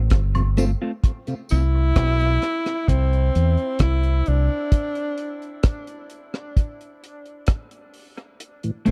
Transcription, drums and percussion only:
0, 0, Header, 1, 2, 480
1, 0, Start_track
1, 0, Tempo, 921659
1, 540, Time_signature, 4, 2, 24, 8
1, 4641, End_track
2, 0, Start_track
2, 0, Title_t, "Drums"
2, 53, Note_on_c, 9, 42, 95
2, 60, Note_on_c, 9, 36, 103
2, 60, Note_on_c, 9, 37, 93
2, 105, Note_off_c, 9, 42, 0
2, 112, Note_off_c, 9, 36, 0
2, 112, Note_off_c, 9, 37, 0
2, 182, Note_on_c, 9, 76, 75
2, 183, Note_on_c, 9, 42, 58
2, 234, Note_off_c, 9, 76, 0
2, 235, Note_off_c, 9, 42, 0
2, 297, Note_on_c, 9, 42, 68
2, 302, Note_on_c, 9, 54, 81
2, 349, Note_off_c, 9, 42, 0
2, 355, Note_off_c, 9, 54, 0
2, 540, Note_on_c, 9, 36, 114
2, 540, Note_on_c, 9, 42, 90
2, 592, Note_off_c, 9, 36, 0
2, 592, Note_off_c, 9, 42, 0
2, 662, Note_on_c, 9, 42, 50
2, 714, Note_off_c, 9, 42, 0
2, 777, Note_on_c, 9, 54, 50
2, 782, Note_on_c, 9, 42, 70
2, 829, Note_off_c, 9, 54, 0
2, 834, Note_off_c, 9, 42, 0
2, 1020, Note_on_c, 9, 42, 87
2, 1021, Note_on_c, 9, 36, 103
2, 1022, Note_on_c, 9, 37, 99
2, 1072, Note_off_c, 9, 42, 0
2, 1073, Note_off_c, 9, 36, 0
2, 1074, Note_off_c, 9, 37, 0
2, 1144, Note_on_c, 9, 42, 48
2, 1196, Note_off_c, 9, 42, 0
2, 1260, Note_on_c, 9, 42, 71
2, 1263, Note_on_c, 9, 37, 63
2, 1312, Note_off_c, 9, 42, 0
2, 1315, Note_off_c, 9, 37, 0
2, 1384, Note_on_c, 9, 42, 34
2, 1387, Note_on_c, 9, 37, 63
2, 1436, Note_off_c, 9, 42, 0
2, 1439, Note_off_c, 9, 37, 0
2, 1502, Note_on_c, 9, 36, 102
2, 1506, Note_on_c, 9, 42, 82
2, 1554, Note_off_c, 9, 36, 0
2, 1558, Note_off_c, 9, 42, 0
2, 1631, Note_on_c, 9, 42, 43
2, 1683, Note_off_c, 9, 42, 0
2, 1746, Note_on_c, 9, 42, 83
2, 1798, Note_off_c, 9, 42, 0
2, 1862, Note_on_c, 9, 42, 36
2, 1914, Note_off_c, 9, 42, 0
2, 1974, Note_on_c, 9, 42, 95
2, 1978, Note_on_c, 9, 36, 111
2, 1980, Note_on_c, 9, 37, 96
2, 2026, Note_off_c, 9, 42, 0
2, 2030, Note_off_c, 9, 36, 0
2, 2032, Note_off_c, 9, 37, 0
2, 2101, Note_on_c, 9, 42, 60
2, 2153, Note_off_c, 9, 42, 0
2, 2218, Note_on_c, 9, 42, 67
2, 2270, Note_off_c, 9, 42, 0
2, 2457, Note_on_c, 9, 36, 115
2, 2457, Note_on_c, 9, 42, 89
2, 2509, Note_off_c, 9, 42, 0
2, 2510, Note_off_c, 9, 36, 0
2, 2579, Note_on_c, 9, 42, 50
2, 2631, Note_off_c, 9, 42, 0
2, 2696, Note_on_c, 9, 42, 70
2, 2748, Note_off_c, 9, 42, 0
2, 2822, Note_on_c, 9, 42, 34
2, 2875, Note_off_c, 9, 42, 0
2, 2933, Note_on_c, 9, 42, 84
2, 2935, Note_on_c, 9, 37, 101
2, 2937, Note_on_c, 9, 36, 100
2, 2985, Note_off_c, 9, 42, 0
2, 2987, Note_off_c, 9, 37, 0
2, 2989, Note_off_c, 9, 36, 0
2, 3059, Note_on_c, 9, 42, 53
2, 3111, Note_off_c, 9, 42, 0
2, 3175, Note_on_c, 9, 42, 66
2, 3228, Note_off_c, 9, 42, 0
2, 3301, Note_on_c, 9, 37, 65
2, 3353, Note_off_c, 9, 37, 0
2, 3420, Note_on_c, 9, 36, 100
2, 3421, Note_on_c, 9, 42, 73
2, 3472, Note_off_c, 9, 36, 0
2, 3473, Note_off_c, 9, 42, 0
2, 3546, Note_on_c, 9, 42, 43
2, 3598, Note_off_c, 9, 42, 0
2, 3665, Note_on_c, 9, 42, 75
2, 3717, Note_off_c, 9, 42, 0
2, 3779, Note_on_c, 9, 42, 36
2, 3831, Note_off_c, 9, 42, 0
2, 3888, Note_on_c, 9, 42, 94
2, 3895, Note_on_c, 9, 37, 99
2, 3896, Note_on_c, 9, 36, 99
2, 3940, Note_off_c, 9, 42, 0
2, 3947, Note_off_c, 9, 37, 0
2, 3948, Note_off_c, 9, 36, 0
2, 4016, Note_on_c, 9, 42, 54
2, 4068, Note_off_c, 9, 42, 0
2, 4133, Note_on_c, 9, 46, 66
2, 4185, Note_off_c, 9, 46, 0
2, 4261, Note_on_c, 9, 42, 35
2, 4313, Note_off_c, 9, 42, 0
2, 4376, Note_on_c, 9, 42, 86
2, 4428, Note_off_c, 9, 42, 0
2, 4496, Note_on_c, 9, 42, 50
2, 4548, Note_off_c, 9, 42, 0
2, 4614, Note_on_c, 9, 42, 72
2, 4641, Note_off_c, 9, 42, 0
2, 4641, End_track
0, 0, End_of_file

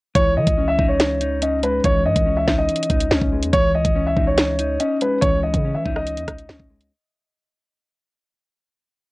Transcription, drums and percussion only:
0, 0, Header, 1, 2, 480
1, 0, Start_track
1, 0, Key_signature, 4, "minor"
1, 0, Tempo, 422535
1, 173, Time_signature, 4, 2, 24, 8
1, 10357, End_track
2, 0, Start_track
2, 0, Title_t, "Drums"
2, 172, Note_on_c, 9, 36, 124
2, 172, Note_on_c, 9, 42, 84
2, 286, Note_off_c, 9, 36, 0
2, 286, Note_off_c, 9, 42, 0
2, 532, Note_on_c, 9, 36, 96
2, 532, Note_on_c, 9, 42, 78
2, 645, Note_off_c, 9, 36, 0
2, 646, Note_off_c, 9, 42, 0
2, 893, Note_on_c, 9, 36, 90
2, 1007, Note_off_c, 9, 36, 0
2, 1133, Note_on_c, 9, 42, 75
2, 1134, Note_on_c, 9, 38, 125
2, 1246, Note_off_c, 9, 42, 0
2, 1247, Note_off_c, 9, 38, 0
2, 1373, Note_on_c, 9, 42, 70
2, 1486, Note_off_c, 9, 42, 0
2, 1612, Note_on_c, 9, 42, 78
2, 1726, Note_off_c, 9, 42, 0
2, 1853, Note_on_c, 9, 42, 58
2, 1966, Note_off_c, 9, 42, 0
2, 2092, Note_on_c, 9, 36, 126
2, 2092, Note_on_c, 9, 42, 84
2, 2205, Note_off_c, 9, 42, 0
2, 2206, Note_off_c, 9, 36, 0
2, 2452, Note_on_c, 9, 36, 92
2, 2452, Note_on_c, 9, 42, 82
2, 2565, Note_off_c, 9, 36, 0
2, 2566, Note_off_c, 9, 42, 0
2, 2812, Note_on_c, 9, 38, 76
2, 2814, Note_on_c, 9, 36, 89
2, 2926, Note_off_c, 9, 38, 0
2, 2927, Note_off_c, 9, 36, 0
2, 3052, Note_on_c, 9, 42, 48
2, 3133, Note_off_c, 9, 42, 0
2, 3133, Note_on_c, 9, 42, 65
2, 3212, Note_off_c, 9, 42, 0
2, 3212, Note_on_c, 9, 42, 81
2, 3293, Note_off_c, 9, 42, 0
2, 3293, Note_on_c, 9, 36, 105
2, 3293, Note_on_c, 9, 42, 70
2, 3406, Note_off_c, 9, 36, 0
2, 3406, Note_off_c, 9, 42, 0
2, 3413, Note_on_c, 9, 42, 81
2, 3526, Note_off_c, 9, 42, 0
2, 3534, Note_on_c, 9, 38, 125
2, 3648, Note_off_c, 9, 38, 0
2, 3652, Note_on_c, 9, 36, 92
2, 3766, Note_off_c, 9, 36, 0
2, 3893, Note_on_c, 9, 42, 84
2, 4007, Note_off_c, 9, 42, 0
2, 4013, Note_on_c, 9, 36, 124
2, 4013, Note_on_c, 9, 42, 82
2, 4127, Note_off_c, 9, 36, 0
2, 4127, Note_off_c, 9, 42, 0
2, 4372, Note_on_c, 9, 36, 95
2, 4373, Note_on_c, 9, 42, 79
2, 4486, Note_off_c, 9, 36, 0
2, 4487, Note_off_c, 9, 42, 0
2, 4734, Note_on_c, 9, 36, 88
2, 4848, Note_off_c, 9, 36, 0
2, 4973, Note_on_c, 9, 42, 75
2, 4974, Note_on_c, 9, 38, 121
2, 5086, Note_off_c, 9, 42, 0
2, 5087, Note_off_c, 9, 38, 0
2, 5213, Note_on_c, 9, 42, 70
2, 5327, Note_off_c, 9, 42, 0
2, 5453, Note_on_c, 9, 42, 79
2, 5567, Note_off_c, 9, 42, 0
2, 5693, Note_on_c, 9, 42, 60
2, 5807, Note_off_c, 9, 42, 0
2, 5933, Note_on_c, 9, 36, 122
2, 5933, Note_on_c, 9, 42, 85
2, 6046, Note_off_c, 9, 36, 0
2, 6046, Note_off_c, 9, 42, 0
2, 6292, Note_on_c, 9, 36, 94
2, 6293, Note_on_c, 9, 42, 81
2, 6406, Note_off_c, 9, 36, 0
2, 6406, Note_off_c, 9, 42, 0
2, 6654, Note_on_c, 9, 36, 91
2, 6767, Note_off_c, 9, 36, 0
2, 6772, Note_on_c, 9, 37, 68
2, 6886, Note_off_c, 9, 37, 0
2, 6893, Note_on_c, 9, 42, 65
2, 7006, Note_off_c, 9, 42, 0
2, 7012, Note_on_c, 9, 42, 64
2, 7126, Note_off_c, 9, 42, 0
2, 7132, Note_on_c, 9, 42, 72
2, 7133, Note_on_c, 9, 36, 102
2, 7133, Note_on_c, 9, 37, 99
2, 7246, Note_off_c, 9, 36, 0
2, 7246, Note_off_c, 9, 42, 0
2, 7247, Note_off_c, 9, 37, 0
2, 7252, Note_on_c, 9, 42, 83
2, 7366, Note_off_c, 9, 42, 0
2, 7373, Note_on_c, 9, 38, 123
2, 7487, Note_off_c, 9, 38, 0
2, 7492, Note_on_c, 9, 36, 91
2, 7606, Note_off_c, 9, 36, 0
2, 7732, Note_on_c, 9, 42, 83
2, 7846, Note_off_c, 9, 42, 0
2, 10357, End_track
0, 0, End_of_file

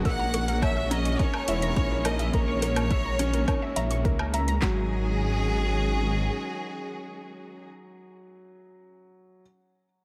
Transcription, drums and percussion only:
0, 0, Header, 1, 2, 480
1, 0, Start_track
1, 0, Tempo, 571429
1, 43, Time_signature, 4, 2, 24, 8
1, 8439, End_track
2, 0, Start_track
2, 0, Title_t, "Drums"
2, 43, Note_on_c, 9, 36, 96
2, 43, Note_on_c, 9, 42, 31
2, 127, Note_off_c, 9, 36, 0
2, 127, Note_off_c, 9, 42, 0
2, 284, Note_on_c, 9, 42, 69
2, 368, Note_off_c, 9, 42, 0
2, 405, Note_on_c, 9, 42, 41
2, 489, Note_off_c, 9, 42, 0
2, 523, Note_on_c, 9, 36, 98
2, 526, Note_on_c, 9, 42, 31
2, 526, Note_on_c, 9, 77, 62
2, 607, Note_off_c, 9, 36, 0
2, 610, Note_off_c, 9, 42, 0
2, 610, Note_off_c, 9, 77, 0
2, 765, Note_on_c, 9, 42, 67
2, 849, Note_off_c, 9, 42, 0
2, 885, Note_on_c, 9, 42, 39
2, 969, Note_off_c, 9, 42, 0
2, 1002, Note_on_c, 9, 36, 110
2, 1004, Note_on_c, 9, 42, 29
2, 1086, Note_off_c, 9, 36, 0
2, 1088, Note_off_c, 9, 42, 0
2, 1122, Note_on_c, 9, 77, 68
2, 1206, Note_off_c, 9, 77, 0
2, 1241, Note_on_c, 9, 42, 75
2, 1325, Note_off_c, 9, 42, 0
2, 1363, Note_on_c, 9, 42, 39
2, 1447, Note_off_c, 9, 42, 0
2, 1482, Note_on_c, 9, 36, 107
2, 1482, Note_on_c, 9, 42, 32
2, 1566, Note_off_c, 9, 36, 0
2, 1566, Note_off_c, 9, 42, 0
2, 1722, Note_on_c, 9, 42, 76
2, 1722, Note_on_c, 9, 77, 64
2, 1806, Note_off_c, 9, 42, 0
2, 1806, Note_off_c, 9, 77, 0
2, 1842, Note_on_c, 9, 42, 40
2, 1926, Note_off_c, 9, 42, 0
2, 1961, Note_on_c, 9, 42, 30
2, 1962, Note_on_c, 9, 36, 91
2, 2045, Note_off_c, 9, 42, 0
2, 2046, Note_off_c, 9, 36, 0
2, 2203, Note_on_c, 9, 42, 68
2, 2287, Note_off_c, 9, 42, 0
2, 2322, Note_on_c, 9, 42, 43
2, 2322, Note_on_c, 9, 77, 73
2, 2406, Note_off_c, 9, 42, 0
2, 2406, Note_off_c, 9, 77, 0
2, 2441, Note_on_c, 9, 36, 98
2, 2441, Note_on_c, 9, 42, 31
2, 2525, Note_off_c, 9, 36, 0
2, 2525, Note_off_c, 9, 42, 0
2, 2682, Note_on_c, 9, 42, 74
2, 2766, Note_off_c, 9, 42, 0
2, 2801, Note_on_c, 9, 42, 42
2, 2885, Note_off_c, 9, 42, 0
2, 2921, Note_on_c, 9, 36, 104
2, 2922, Note_on_c, 9, 42, 30
2, 2922, Note_on_c, 9, 77, 68
2, 3005, Note_off_c, 9, 36, 0
2, 3006, Note_off_c, 9, 42, 0
2, 3006, Note_off_c, 9, 77, 0
2, 3161, Note_on_c, 9, 42, 74
2, 3245, Note_off_c, 9, 42, 0
2, 3281, Note_on_c, 9, 42, 41
2, 3365, Note_off_c, 9, 42, 0
2, 3402, Note_on_c, 9, 36, 115
2, 3403, Note_on_c, 9, 42, 31
2, 3486, Note_off_c, 9, 36, 0
2, 3487, Note_off_c, 9, 42, 0
2, 3522, Note_on_c, 9, 77, 71
2, 3606, Note_off_c, 9, 77, 0
2, 3643, Note_on_c, 9, 42, 69
2, 3727, Note_off_c, 9, 42, 0
2, 3762, Note_on_c, 9, 42, 44
2, 3846, Note_off_c, 9, 42, 0
2, 3880, Note_on_c, 9, 38, 93
2, 3880, Note_on_c, 9, 39, 82
2, 3882, Note_on_c, 9, 36, 94
2, 3964, Note_off_c, 9, 38, 0
2, 3964, Note_off_c, 9, 39, 0
2, 3966, Note_off_c, 9, 36, 0
2, 8439, End_track
0, 0, End_of_file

